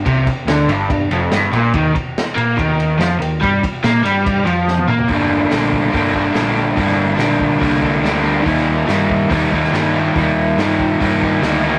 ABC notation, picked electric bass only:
X:1
M:4/4
L:1/8
Q:1/4=143
K:Gm
V:1 name="Picked electric bass" clef=bass
C,, z D,, G,,, G,,, F,,, G,,, B,,, | E,, z2 B,, E,,2 F,, E,, | G,, z B,, G,,2 F,,2 B,, | G,,,2 B,,,2 G,,,2 B,,,2 |
G,,,2 B,,,2 C,,2 D,,2 | E,,2 G,,2 E,,2 G,,2 | E,,2 G,,2 G,,2 D,,2 |]